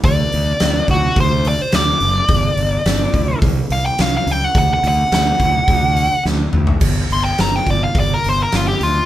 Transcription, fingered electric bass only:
\new Staff \with { instrumentName = "Fingered electric bass" } { \clef bass \time 4/4 \key d \phrygian \tempo 4 = 106 d,8 d,8 d,8 d,8 d,4 d,8 fis,,8 | g,,8 g,,8 g,,8 d,8 bis,,8 bis,,8 bis,,8 cis,8 | d,8 d,8 d,8 d,8 d,4 d,8 d,8 | g,,8 g,,8 g,,8 g,,8 g,,8 g,,8 g,,8 d,8 | }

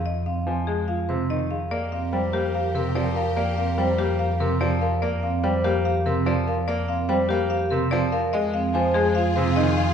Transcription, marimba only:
\new Staff \with { instrumentName = "Marimba" } { \time 4/4 \key g \phrygian \tempo 4 = 145 ees''8 f''8 aes''8 aes'8 f''8 c''8 ees''8 f''8 | d''8 f''8 g''8 g'8 f''8 bes'8 d''8 f''8 | d''8 f''8 g''8 g'8 f''8 bes'8 d''8 f''8 | d''8 f''8 g''8 g'8 f''8 bes'8 d''8 f''8 |
d''8 f''8 g''8 g'8 f''8 bes'8 d''8 f''8 | ees''8 f''8 aes''8 aes'8 f''8 c''8 ees''8 f''8 | }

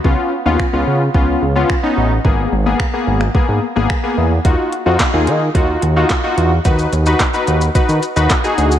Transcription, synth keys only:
\new Staff \with { instrumentName = "Synth keys" } { \time 4/4 \key ees \minor \tempo 4 = 109 <ces' des' f'>8 r16 <ces' des' f'>16 r16 <ces' des' f'>8 r16 <ces' des' f'>8 r16 <ces' des' f'>16 r16 <ces' des' ees'>8 r16 | <bes ces' aes'>8 r16 <bes ces' aes'>16 r16 <bes ces' aes'>8 r16 <bes ces' aes'>8 r16 <bes ces' aes'>16 r16 <bes ces' aes'>8 r16 | <ees' f' ges'>8 r16 <ees' f' ges'>16 r16 <ees' f' aes'>8 r16 <ees' f' ges'>8 r16 <ees' f' ges'>16 r16 <ees' f' ges'>8 r16 | <dis' fis' b'>8 r16 <dis' fis' b'>16 r16 <dis' fis' b'>8 r16 <dis' fis' b'>8 r16 <dis' fis' b'>16 r16 <dis' fis' aes'>8 r16 | }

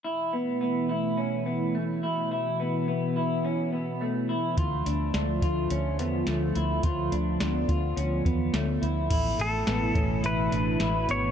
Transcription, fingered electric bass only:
\new Staff \with { instrumentName = "Fingered electric bass" } { \clef bass \time 4/4 \key a \major \tempo 4 = 106 r1 | r1 | d,8 d,8 d,8 d,8 d,8 e,8 d,8 d,8 | d,8 d,8 d,8 d,8 d,8 e,8 d,8 d,8 |
a,,8 a,,8 a,,8 a,,8 a,,8 a,,8 a,,8 gis,,8 | }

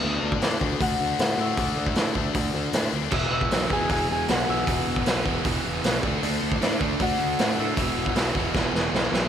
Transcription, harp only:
\new Staff \with { instrumentName = "Harp" } { \time 4/4 \key e \mixolydian \tempo 4 = 155 r4 <d' d''>4 <fis' fis''>4. <e' e''>8 | <d' d''>4 r2. | <e' e''>8 <e' e''>4 <gis' gis''>8 <gis' gis''>8 <gis' gis''>8 <fis' fis''>8 <e' e''>8~ | <e' e''>2~ <e' e''>8 r4. |
r4 <d' d''>4 <fis' fis''>4. <e' e''>8 | <e' e''>4 r2. | }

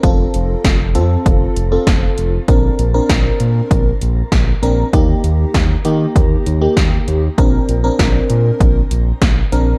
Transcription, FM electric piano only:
\new Staff \with { instrumentName = "FM electric piano" } { \time 4/4 \key bes \major \tempo 4 = 98 <c' f' a'>4~ <c' f' a'>16 r16 <c' f' a'>4 r16 <c' f' a'>4 r16 | <c' d' bes'>8 r16 <c' d' bes'>4. r4 r16 <c' d' bes'>8 | <bes ees' g'>4~ <bes ees' g'>16 r16 <bes ees' g'>4 r16 <bes ees' g'>4 r16 | <c' d' bes'>8 r16 <c' d' bes'>4. r4 r16 <c' d' bes'>8 | }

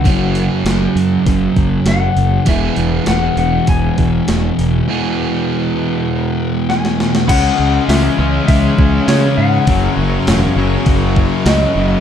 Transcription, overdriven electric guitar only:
\new Staff \with { instrumentName = "Overdriven electric guitar" } { \clef bass \time 4/4 \key fis \mixolydian \tempo 4 = 100 <fis, cis fis ais cis' fis'>1 | <e, b, e gis b gis'>1 | <e, b, e gis b gis'>1 | r1 |
r1 | }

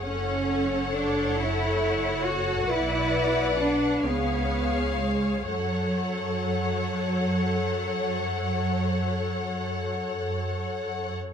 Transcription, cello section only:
\new Staff \with { instrumentName = "Cello section" } { \time 12/8 \key fis \minor \tempo 4. = 41 cis'4 d'8 e'4 fis'8 e'4 d'8 b4 gis8 | fis1~ fis8 r4. | }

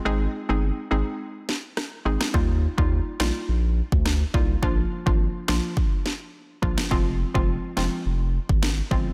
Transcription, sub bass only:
\new Staff \with { instrumentName = "Sub bass" } { \clef bass \time 4/4 \key ees \major \tempo 4 = 105 aes,,8 r16 g,,8 r16 aes,,16 r4. r16 aes,,16 r16 | ees,8. ees,8 r16 bes,,16 r16 bes,,8. d,8. c,8 | bes,,8 r16 aes,,8 r16 bes,,16 r4. r16 bes,,16 r16 | f,,8. f,,8 r16 f,,16 r16 f,,8. aes,,8. g,,8 | }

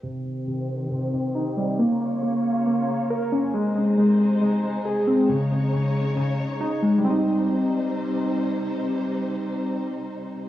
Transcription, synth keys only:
\new Staff \with { instrumentName = "Synth keys" } { \clef bass \time 4/4 \key c \phrygian \tempo 4 = 137 c8 c8 c4 c8 c8 ees'8 g8 | bes8 bes8 bes4 bes8 bes8 bes'8 des'8 | aes8 aes8 aes4 aes8 aes8 aes'8 c'8 | des8 des8 des4 des8 des8 ees'8 aes8 |
<g c' ees'>1~ | <g c' ees'>1 | }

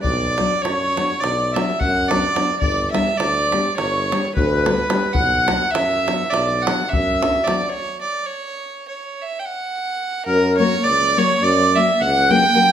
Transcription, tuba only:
\new Staff \with { instrumentName = "Tuba" } { \clef bass \time 9/8 \tempo 4. = 70 b,,4 fis,4 b,,4 fis,4. | g,,4 d,4 g,,4 d,4. | b,,4 fis,4 b,,4 fis,4. | r1 r8 |
fis,4 cis,4 fis,4 cis,4. | }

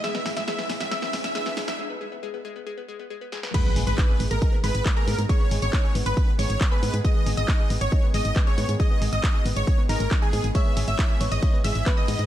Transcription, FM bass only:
\new Staff \with { instrumentName = "FM bass" } { \clef bass \time 4/4 \key gis \minor \tempo 4 = 137 r8 gis,,16 gis,,16 r8 gis,,16 gis,,16 r8 gis,,16 gis,,16 r8 gis,,16 gis,,16 | r1 | r8 gis,,16 gis,,16 r8 gis,,16 gis,,16 r8 gis,,16 gis,,16 r8 gis,16 gis,16 | r8 gis,,16 gis,,16 r8 gis,,16 gis,,16 r8 gis,,16 gis,,16 r8 gis,16 gis,16 |
r8 gis,,16 gis,,16 r8 gis,,16 gis,,16 r8 gis,,16 gis,,16 r8 gis,16 gis,16 | r8 gis,,16 gis,,16 r8 gis,,16 gis,,16 r8 gis,,16 gis,,16 r8 gis,16 gis,,16 | r8 gis,,16 gis,,16 r8 gis,,16 gis,,16 r8 gis,,16 gis,,16 r8 gis,16 gis,16 | }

